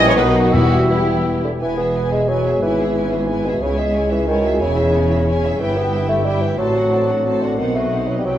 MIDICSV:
0, 0, Header, 1, 12, 480
1, 0, Start_track
1, 0, Key_signature, 4, "major"
1, 0, Tempo, 359928
1, 705, Time_signature, 3, 2, 24, 8
1, 1677, Tempo, 342661
1, 3117, Tempo, 330215
1, 9357, Tempo, 337458
1, 11921, End_track
2, 0, Start_track
2, 0, Title_t, "Flute section"
2, 0, Program_c, 0, 73
2, 0, Note_on_c, 0, 79, 69
2, 225, Note_off_c, 0, 79, 0
2, 234, Note_on_c, 0, 78, 68
2, 690, Note_on_c, 0, 79, 59
2, 710, Note_off_c, 0, 78, 0
2, 1169, Note_off_c, 0, 79, 0
2, 1185, Note_on_c, 0, 79, 53
2, 1904, Note_off_c, 0, 79, 0
2, 11921, End_track
3, 0, Start_track
3, 0, Title_t, "Violin section"
3, 0, Program_c, 1, 48
3, 92, Note_on_c, 1, 73, 79
3, 217, Note_off_c, 1, 73, 0
3, 217, Note_on_c, 1, 71, 77
3, 565, Note_on_c, 1, 66, 63
3, 572, Note_off_c, 1, 71, 0
3, 671, Note_off_c, 1, 66, 0
3, 687, Note_on_c, 1, 66, 75
3, 1175, Note_off_c, 1, 66, 0
3, 1184, Note_on_c, 1, 64, 49
3, 1903, Note_off_c, 1, 64, 0
3, 2174, Note_on_c, 1, 80, 40
3, 2391, Note_off_c, 1, 80, 0
3, 2414, Note_on_c, 1, 76, 34
3, 2641, Note_on_c, 1, 80, 34
3, 2646, Note_off_c, 1, 76, 0
3, 2878, Note_off_c, 1, 80, 0
3, 2888, Note_on_c, 1, 76, 33
3, 3118, Note_on_c, 1, 80, 35
3, 3122, Note_off_c, 1, 76, 0
3, 3345, Note_off_c, 1, 80, 0
3, 3370, Note_on_c, 1, 76, 35
3, 3605, Note_off_c, 1, 76, 0
3, 3613, Note_on_c, 1, 80, 40
3, 3830, Note_off_c, 1, 80, 0
3, 3861, Note_on_c, 1, 76, 35
3, 4086, Note_on_c, 1, 80, 35
3, 4093, Note_off_c, 1, 76, 0
3, 4313, Note_on_c, 1, 76, 33
3, 4328, Note_off_c, 1, 80, 0
3, 4551, Note_on_c, 1, 80, 38
3, 4561, Note_off_c, 1, 76, 0
3, 4781, Note_off_c, 1, 80, 0
3, 4803, Note_on_c, 1, 76, 35
3, 5040, Note_on_c, 1, 80, 40
3, 5043, Note_off_c, 1, 76, 0
3, 5263, Note_off_c, 1, 80, 0
3, 5272, Note_on_c, 1, 76, 36
3, 5517, Note_off_c, 1, 76, 0
3, 5524, Note_on_c, 1, 80, 39
3, 5755, Note_on_c, 1, 76, 37
3, 5764, Note_off_c, 1, 80, 0
3, 5999, Note_on_c, 1, 80, 38
3, 6000, Note_off_c, 1, 76, 0
3, 6227, Note_off_c, 1, 80, 0
3, 6263, Note_on_c, 1, 76, 42
3, 6483, Note_on_c, 1, 80, 43
3, 6495, Note_off_c, 1, 76, 0
3, 6706, Note_off_c, 1, 80, 0
3, 6723, Note_on_c, 1, 76, 38
3, 6963, Note_off_c, 1, 76, 0
3, 6973, Note_on_c, 1, 80, 42
3, 7208, Note_off_c, 1, 80, 0
3, 7214, Note_on_c, 1, 76, 37
3, 7448, Note_off_c, 1, 76, 0
3, 7463, Note_on_c, 1, 80, 42
3, 7676, Note_off_c, 1, 80, 0
3, 7705, Note_on_c, 1, 76, 41
3, 7921, Note_on_c, 1, 79, 45
3, 7934, Note_off_c, 1, 76, 0
3, 8145, Note_off_c, 1, 79, 0
3, 8165, Note_on_c, 1, 76, 40
3, 8402, Note_off_c, 1, 76, 0
3, 8413, Note_on_c, 1, 79, 37
3, 8644, Note_off_c, 1, 79, 0
3, 8645, Note_on_c, 1, 76, 36
3, 8880, Note_off_c, 1, 76, 0
3, 8884, Note_on_c, 1, 79, 40
3, 9103, Note_off_c, 1, 79, 0
3, 9139, Note_on_c, 1, 76, 38
3, 9367, Note_on_c, 1, 81, 40
3, 9368, Note_off_c, 1, 76, 0
3, 9582, Note_off_c, 1, 81, 0
3, 9606, Note_on_c, 1, 78, 35
3, 9840, Note_off_c, 1, 78, 0
3, 9845, Note_on_c, 1, 81, 38
3, 10080, Note_off_c, 1, 81, 0
3, 10085, Note_on_c, 1, 78, 35
3, 10320, Note_off_c, 1, 78, 0
3, 10329, Note_on_c, 1, 81, 35
3, 10544, Note_off_c, 1, 81, 0
3, 10579, Note_on_c, 1, 78, 32
3, 10783, Note_off_c, 1, 78, 0
3, 10800, Note_on_c, 1, 78, 33
3, 11015, Note_off_c, 1, 78, 0
3, 11030, Note_on_c, 1, 75, 29
3, 11266, Note_off_c, 1, 75, 0
3, 11268, Note_on_c, 1, 78, 29
3, 11508, Note_off_c, 1, 78, 0
3, 11525, Note_on_c, 1, 75, 26
3, 11744, Note_on_c, 1, 79, 26
3, 11761, Note_off_c, 1, 75, 0
3, 11921, Note_off_c, 1, 79, 0
3, 11921, End_track
4, 0, Start_track
4, 0, Title_t, "Oboe"
4, 0, Program_c, 2, 68
4, 0, Note_on_c, 2, 73, 76
4, 209, Note_off_c, 2, 73, 0
4, 218, Note_on_c, 2, 75, 68
4, 700, Note_on_c, 2, 76, 68
4, 720, Note_off_c, 2, 75, 0
4, 1922, Note_off_c, 2, 76, 0
4, 11921, End_track
5, 0, Start_track
5, 0, Title_t, "Violin section"
5, 0, Program_c, 3, 48
5, 0, Note_on_c, 3, 64, 71
5, 0, Note_on_c, 3, 67, 71
5, 213, Note_off_c, 3, 67, 0
5, 214, Note_off_c, 3, 64, 0
5, 236, Note_on_c, 3, 63, 67
5, 243, Note_on_c, 3, 66, 69
5, 710, Note_on_c, 3, 67, 56
5, 711, Note_off_c, 3, 63, 0
5, 712, Note_on_c, 3, 64, 55
5, 714, Note_off_c, 3, 66, 0
5, 1197, Note_off_c, 3, 67, 0
5, 1198, Note_off_c, 3, 64, 0
5, 1214, Note_on_c, 3, 64, 50
5, 1214, Note_on_c, 3, 67, 53
5, 1920, Note_off_c, 3, 64, 0
5, 1920, Note_off_c, 3, 67, 0
5, 2192, Note_on_c, 3, 71, 37
5, 2195, Note_on_c, 3, 64, 38
5, 2401, Note_off_c, 3, 71, 0
5, 2402, Note_off_c, 3, 64, 0
5, 2418, Note_on_c, 3, 68, 37
5, 2423, Note_off_c, 3, 68, 0
5, 2423, Note_on_c, 3, 68, 38
5, 2650, Note_off_c, 3, 68, 0
5, 2661, Note_on_c, 3, 64, 37
5, 2666, Note_on_c, 3, 71, 37
5, 2888, Note_off_c, 3, 64, 0
5, 2891, Note_off_c, 3, 71, 0
5, 2898, Note_on_c, 3, 68, 34
5, 2899, Note_off_c, 3, 68, 0
5, 2899, Note_on_c, 3, 68, 34
5, 3127, Note_off_c, 3, 68, 0
5, 3143, Note_on_c, 3, 71, 35
5, 3153, Note_on_c, 3, 64, 35
5, 3358, Note_off_c, 3, 71, 0
5, 3364, Note_off_c, 3, 64, 0
5, 3384, Note_on_c, 3, 68, 38
5, 3390, Note_off_c, 3, 68, 0
5, 3390, Note_on_c, 3, 68, 36
5, 3615, Note_off_c, 3, 68, 0
5, 3638, Note_on_c, 3, 71, 38
5, 3639, Note_on_c, 3, 64, 39
5, 3843, Note_off_c, 3, 71, 0
5, 3844, Note_off_c, 3, 64, 0
5, 3863, Note_on_c, 3, 68, 38
5, 3868, Note_off_c, 3, 68, 0
5, 3868, Note_on_c, 3, 68, 37
5, 4082, Note_on_c, 3, 71, 37
5, 4088, Note_on_c, 3, 64, 35
5, 4097, Note_off_c, 3, 68, 0
5, 4326, Note_off_c, 3, 71, 0
5, 4329, Note_off_c, 3, 64, 0
5, 4341, Note_on_c, 3, 68, 39
5, 4346, Note_off_c, 3, 68, 0
5, 4346, Note_on_c, 3, 68, 36
5, 4577, Note_off_c, 3, 68, 0
5, 4596, Note_on_c, 3, 71, 37
5, 4597, Note_on_c, 3, 64, 37
5, 4805, Note_off_c, 3, 71, 0
5, 4806, Note_off_c, 3, 64, 0
5, 4838, Note_on_c, 3, 68, 37
5, 4843, Note_off_c, 3, 68, 0
5, 4843, Note_on_c, 3, 68, 39
5, 5063, Note_off_c, 3, 68, 0
5, 5066, Note_on_c, 3, 73, 39
5, 5069, Note_on_c, 3, 64, 37
5, 5277, Note_off_c, 3, 73, 0
5, 5279, Note_off_c, 3, 64, 0
5, 5298, Note_on_c, 3, 68, 40
5, 5305, Note_on_c, 3, 76, 38
5, 5516, Note_on_c, 3, 73, 35
5, 5529, Note_on_c, 3, 64, 38
5, 5531, Note_off_c, 3, 68, 0
5, 5534, Note_off_c, 3, 76, 0
5, 5761, Note_off_c, 3, 73, 0
5, 5767, Note_off_c, 3, 64, 0
5, 5772, Note_on_c, 3, 68, 36
5, 5782, Note_on_c, 3, 76, 39
5, 6009, Note_off_c, 3, 68, 0
5, 6014, Note_off_c, 3, 76, 0
5, 6035, Note_on_c, 3, 64, 39
5, 6038, Note_on_c, 3, 73, 38
5, 6246, Note_off_c, 3, 64, 0
5, 6247, Note_off_c, 3, 73, 0
5, 6259, Note_on_c, 3, 76, 38
5, 6260, Note_on_c, 3, 68, 39
5, 6487, Note_on_c, 3, 73, 42
5, 6492, Note_on_c, 3, 64, 41
5, 6493, Note_off_c, 3, 68, 0
5, 6493, Note_off_c, 3, 76, 0
5, 6708, Note_off_c, 3, 73, 0
5, 6711, Note_off_c, 3, 64, 0
5, 6725, Note_on_c, 3, 76, 41
5, 6726, Note_on_c, 3, 68, 40
5, 6964, Note_off_c, 3, 76, 0
5, 6965, Note_off_c, 3, 68, 0
5, 6970, Note_on_c, 3, 64, 39
5, 6974, Note_on_c, 3, 73, 40
5, 7207, Note_off_c, 3, 64, 0
5, 7207, Note_on_c, 3, 76, 40
5, 7209, Note_off_c, 3, 73, 0
5, 7209, Note_on_c, 3, 68, 40
5, 7440, Note_on_c, 3, 64, 40
5, 7444, Note_off_c, 3, 76, 0
5, 7445, Note_off_c, 3, 68, 0
5, 7454, Note_on_c, 3, 73, 43
5, 7663, Note_off_c, 3, 64, 0
5, 7671, Note_off_c, 3, 73, 0
5, 7695, Note_on_c, 3, 68, 42
5, 7701, Note_on_c, 3, 76, 43
5, 7928, Note_off_c, 3, 68, 0
5, 7931, Note_off_c, 3, 76, 0
5, 7960, Note_on_c, 3, 64, 45
5, 7963, Note_on_c, 3, 76, 41
5, 8166, Note_off_c, 3, 64, 0
5, 8167, Note_off_c, 3, 76, 0
5, 8194, Note_on_c, 3, 79, 44
5, 8197, Note_on_c, 3, 67, 42
5, 8416, Note_off_c, 3, 79, 0
5, 8416, Note_on_c, 3, 76, 40
5, 8418, Note_off_c, 3, 67, 0
5, 8421, Note_on_c, 3, 64, 40
5, 8646, Note_off_c, 3, 76, 0
5, 8648, Note_off_c, 3, 64, 0
5, 8669, Note_on_c, 3, 79, 39
5, 8671, Note_on_c, 3, 67, 37
5, 8884, Note_on_c, 3, 64, 37
5, 8884, Note_on_c, 3, 76, 40
5, 8892, Note_off_c, 3, 79, 0
5, 8893, Note_off_c, 3, 67, 0
5, 9104, Note_off_c, 3, 64, 0
5, 9104, Note_off_c, 3, 76, 0
5, 9120, Note_on_c, 3, 79, 38
5, 9128, Note_on_c, 3, 67, 40
5, 9359, Note_off_c, 3, 79, 0
5, 9363, Note_off_c, 3, 67, 0
5, 9374, Note_on_c, 3, 72, 39
5, 9376, Note_on_c, 3, 69, 39
5, 9586, Note_off_c, 3, 72, 0
5, 9587, Note_off_c, 3, 69, 0
5, 9610, Note_on_c, 3, 69, 38
5, 9613, Note_on_c, 3, 66, 39
5, 9811, Note_off_c, 3, 69, 0
5, 9825, Note_on_c, 3, 72, 37
5, 9828, Note_on_c, 3, 69, 35
5, 9843, Note_off_c, 3, 66, 0
5, 10067, Note_off_c, 3, 69, 0
5, 10070, Note_off_c, 3, 72, 0
5, 10082, Note_on_c, 3, 66, 34
5, 10084, Note_on_c, 3, 69, 35
5, 10319, Note_off_c, 3, 66, 0
5, 10319, Note_off_c, 3, 69, 0
5, 10328, Note_on_c, 3, 72, 34
5, 10334, Note_on_c, 3, 69, 37
5, 10544, Note_off_c, 3, 72, 0
5, 10547, Note_off_c, 3, 69, 0
5, 10573, Note_on_c, 3, 69, 35
5, 10574, Note_on_c, 3, 66, 35
5, 10793, Note_on_c, 3, 63, 33
5, 10794, Note_on_c, 3, 72, 31
5, 10800, Note_off_c, 3, 66, 0
5, 10800, Note_off_c, 3, 69, 0
5, 11011, Note_off_c, 3, 63, 0
5, 11011, Note_off_c, 3, 72, 0
5, 11043, Note_on_c, 3, 66, 34
5, 11048, Note_on_c, 3, 71, 31
5, 11264, Note_on_c, 3, 72, 29
5, 11267, Note_on_c, 3, 63, 30
5, 11272, Note_off_c, 3, 66, 0
5, 11275, Note_off_c, 3, 71, 0
5, 11501, Note_on_c, 3, 71, 27
5, 11502, Note_on_c, 3, 66, 27
5, 11506, Note_off_c, 3, 72, 0
5, 11507, Note_off_c, 3, 63, 0
5, 11748, Note_off_c, 3, 71, 0
5, 11749, Note_off_c, 3, 66, 0
5, 11761, Note_on_c, 3, 67, 27
5, 11765, Note_on_c, 3, 71, 25
5, 11921, Note_off_c, 3, 67, 0
5, 11921, Note_off_c, 3, 71, 0
5, 11921, End_track
6, 0, Start_track
6, 0, Title_t, "French horn section"
6, 0, Program_c, 4, 60
6, 0, Note_on_c, 4, 55, 72
6, 0, Note_on_c, 4, 64, 65
6, 216, Note_off_c, 4, 64, 0
6, 226, Note_on_c, 4, 54, 67
6, 226, Note_on_c, 4, 63, 69
6, 230, Note_off_c, 4, 55, 0
6, 697, Note_off_c, 4, 63, 0
6, 706, Note_off_c, 4, 54, 0
6, 719, Note_on_c, 4, 55, 54
6, 719, Note_on_c, 4, 64, 58
6, 1906, Note_off_c, 4, 55, 0
6, 1931, Note_off_c, 4, 64, 0
6, 2189, Note_on_c, 4, 59, 48
6, 2190, Note_on_c, 4, 68, 49
6, 4998, Note_off_c, 4, 59, 0
6, 4999, Note_off_c, 4, 68, 0
6, 5048, Note_on_c, 4, 68, 55
6, 5051, Note_on_c, 4, 64, 54
6, 7865, Note_off_c, 4, 68, 0
6, 7867, Note_off_c, 4, 64, 0
6, 7948, Note_on_c, 4, 64, 51
6, 7951, Note_on_c, 4, 67, 52
6, 9312, Note_off_c, 4, 64, 0
6, 9313, Note_off_c, 4, 67, 0
6, 9371, Note_on_c, 4, 66, 45
6, 9374, Note_on_c, 4, 60, 48
6, 10741, Note_off_c, 4, 66, 0
6, 10805, Note_on_c, 4, 63, 40
6, 11701, Note_off_c, 4, 63, 0
6, 11702, Note_off_c, 4, 60, 0
6, 11760, Note_on_c, 4, 59, 34
6, 11762, Note_on_c, 4, 64, 35
6, 11921, Note_off_c, 4, 59, 0
6, 11921, Note_off_c, 4, 64, 0
6, 11921, End_track
7, 0, Start_track
7, 0, Title_t, "Viola section"
7, 0, Program_c, 5, 48
7, 129, Note_on_c, 5, 73, 93
7, 172, Note_off_c, 5, 73, 0
7, 234, Note_on_c, 5, 71, 88
7, 341, Note_off_c, 5, 71, 0
7, 594, Note_on_c, 5, 66, 76
7, 690, Note_off_c, 5, 66, 0
7, 706, Note_on_c, 5, 66, 84
7, 1185, Note_off_c, 5, 66, 0
7, 1202, Note_on_c, 5, 64, 65
7, 1928, Note_off_c, 5, 64, 0
7, 2174, Note_on_c, 5, 59, 46
7, 2611, Note_off_c, 5, 59, 0
7, 2645, Note_on_c, 5, 56, 43
7, 3109, Note_off_c, 5, 56, 0
7, 3117, Note_on_c, 5, 59, 46
7, 3591, Note_off_c, 5, 59, 0
7, 3613, Note_on_c, 5, 64, 50
7, 4079, Note_off_c, 5, 64, 0
7, 4102, Note_on_c, 5, 61, 49
7, 4567, Note_off_c, 5, 61, 0
7, 4589, Note_on_c, 5, 59, 42
7, 5521, Note_on_c, 5, 61, 51
7, 5533, Note_off_c, 5, 59, 0
7, 6004, Note_off_c, 5, 61, 0
7, 6029, Note_on_c, 5, 66, 58
7, 6499, Note_off_c, 5, 66, 0
7, 6513, Note_on_c, 5, 64, 50
7, 6977, Note_off_c, 5, 64, 0
7, 6983, Note_on_c, 5, 61, 61
7, 7912, Note_off_c, 5, 61, 0
7, 7941, Note_on_c, 5, 59, 55
7, 8410, Note_off_c, 5, 59, 0
7, 8419, Note_on_c, 5, 64, 62
7, 9348, Note_off_c, 5, 64, 0
7, 9365, Note_on_c, 5, 66, 51
7, 9837, Note_off_c, 5, 66, 0
7, 9838, Note_on_c, 5, 62, 51
7, 10317, Note_off_c, 5, 62, 0
7, 10323, Note_on_c, 5, 60, 40
7, 10794, Note_off_c, 5, 60, 0
7, 10795, Note_on_c, 5, 59, 42
7, 11257, Note_off_c, 5, 59, 0
7, 11268, Note_on_c, 5, 63, 42
7, 11743, Note_off_c, 5, 63, 0
7, 11748, Note_on_c, 5, 64, 35
7, 11921, Note_off_c, 5, 64, 0
7, 11921, End_track
8, 0, Start_track
8, 0, Title_t, "Clarinet"
8, 0, Program_c, 6, 71
8, 0, Note_on_c, 6, 61, 68
8, 223, Note_on_c, 6, 59, 67
8, 243, Note_off_c, 6, 61, 0
8, 704, Note_off_c, 6, 59, 0
8, 711, Note_on_c, 6, 59, 57
8, 1188, Note_off_c, 6, 59, 0
8, 1211, Note_on_c, 6, 59, 50
8, 1918, Note_off_c, 6, 59, 0
8, 11921, End_track
9, 0, Start_track
9, 0, Title_t, "Bassoon"
9, 0, Program_c, 7, 70
9, 0, Note_on_c, 7, 52, 73
9, 238, Note_on_c, 7, 51, 75
9, 258, Note_off_c, 7, 52, 0
9, 708, Note_off_c, 7, 51, 0
9, 716, Note_on_c, 7, 52, 62
9, 1190, Note_off_c, 7, 52, 0
9, 1207, Note_on_c, 7, 52, 51
9, 1916, Note_off_c, 7, 52, 0
9, 1937, Note_on_c, 7, 50, 49
9, 2044, Note_off_c, 7, 50, 0
9, 2176, Note_on_c, 7, 52, 57
9, 2390, Note_off_c, 7, 52, 0
9, 2398, Note_on_c, 7, 59, 64
9, 2865, Note_off_c, 7, 59, 0
9, 2880, Note_on_c, 7, 56, 57
9, 3115, Note_on_c, 7, 54, 61
9, 3136, Note_off_c, 7, 56, 0
9, 3592, Note_off_c, 7, 54, 0
9, 3601, Note_on_c, 7, 52, 66
9, 4815, Note_on_c, 7, 47, 58
9, 4837, Note_off_c, 7, 52, 0
9, 5052, Note_on_c, 7, 49, 69
9, 5073, Note_off_c, 7, 47, 0
9, 5286, Note_off_c, 7, 49, 0
9, 5293, Note_on_c, 7, 56, 58
9, 5760, Note_off_c, 7, 56, 0
9, 5778, Note_on_c, 7, 52, 54
9, 6003, Note_off_c, 7, 52, 0
9, 6012, Note_on_c, 7, 51, 68
9, 6481, Note_off_c, 7, 51, 0
9, 6495, Note_on_c, 7, 49, 77
9, 7447, Note_off_c, 7, 49, 0
9, 7694, Note_on_c, 7, 49, 60
9, 7933, Note_on_c, 7, 52, 69
9, 7955, Note_off_c, 7, 49, 0
9, 8172, Note_on_c, 7, 59, 64
9, 8194, Note_off_c, 7, 52, 0
9, 8639, Note_off_c, 7, 59, 0
9, 8648, Note_on_c, 7, 57, 68
9, 8887, Note_on_c, 7, 55, 67
9, 8908, Note_off_c, 7, 57, 0
9, 9117, Note_on_c, 7, 52, 60
9, 9139, Note_off_c, 7, 55, 0
9, 9353, Note_off_c, 7, 52, 0
9, 9361, Note_on_c, 7, 54, 69
9, 10545, Note_on_c, 7, 50, 53
9, 10566, Note_off_c, 7, 54, 0
9, 10786, Note_on_c, 7, 51, 48
9, 10807, Note_off_c, 7, 50, 0
9, 11008, Note_off_c, 7, 51, 0
9, 11017, Note_on_c, 7, 57, 50
9, 11492, Note_on_c, 7, 54, 42
9, 11513, Note_off_c, 7, 57, 0
9, 11621, Note_off_c, 7, 54, 0
9, 11639, Note_on_c, 7, 55, 35
9, 11729, Note_off_c, 7, 55, 0
9, 11738, Note_on_c, 7, 54, 47
9, 11910, Note_off_c, 7, 54, 0
9, 11921, End_track
10, 0, Start_track
10, 0, Title_t, "Cello section"
10, 0, Program_c, 8, 48
10, 0, Note_on_c, 8, 46, 74
10, 208, Note_on_c, 8, 47, 72
10, 220, Note_off_c, 8, 46, 0
10, 695, Note_on_c, 8, 40, 64
10, 697, Note_off_c, 8, 47, 0
10, 1919, Note_off_c, 8, 40, 0
10, 2171, Note_on_c, 8, 40, 46
10, 3545, Note_off_c, 8, 40, 0
10, 3609, Note_on_c, 8, 44, 45
10, 5049, Note_off_c, 8, 44, 0
10, 5050, Note_on_c, 8, 37, 47
10, 6460, Note_off_c, 8, 37, 0
10, 6490, Note_on_c, 8, 40, 55
10, 7923, Note_off_c, 8, 40, 0
10, 7928, Note_on_c, 8, 43, 52
10, 9331, Note_off_c, 8, 43, 0
10, 9357, Note_on_c, 8, 45, 47
10, 10762, Note_off_c, 8, 45, 0
10, 10796, Note_on_c, 8, 47, 42
10, 11752, Note_on_c, 8, 48, 33
10, 11753, Note_off_c, 8, 47, 0
10, 11921, Note_off_c, 8, 48, 0
10, 11921, End_track
11, 0, Start_track
11, 0, Title_t, "Timpani"
11, 0, Program_c, 10, 47
11, 709, Note_on_c, 10, 40, 74
11, 1388, Note_off_c, 10, 40, 0
11, 11921, End_track
12, 0, Start_track
12, 0, Title_t, "Double bass section"
12, 0, Program_c, 11, 48
12, 0, Note_on_c, 11, 34, 74
12, 223, Note_off_c, 11, 34, 0
12, 225, Note_on_c, 11, 35, 75
12, 704, Note_on_c, 11, 28, 64
12, 705, Note_off_c, 11, 35, 0
12, 1924, Note_off_c, 11, 28, 0
12, 2168, Note_on_c, 11, 28, 46
12, 3543, Note_off_c, 11, 28, 0
12, 3601, Note_on_c, 11, 32, 49
12, 5041, Note_on_c, 11, 37, 46
12, 5045, Note_off_c, 11, 32, 0
12, 6456, Note_off_c, 11, 37, 0
12, 6491, Note_on_c, 11, 28, 50
12, 7924, Note_off_c, 11, 28, 0
12, 7932, Note_on_c, 11, 31, 48
12, 9333, Note_off_c, 11, 31, 0
12, 9367, Note_on_c, 11, 33, 48
12, 10767, Note_off_c, 11, 33, 0
12, 10788, Note_on_c, 11, 35, 43
12, 11745, Note_on_c, 11, 36, 33
12, 11750, Note_off_c, 11, 35, 0
12, 11921, Note_off_c, 11, 36, 0
12, 11921, End_track
0, 0, End_of_file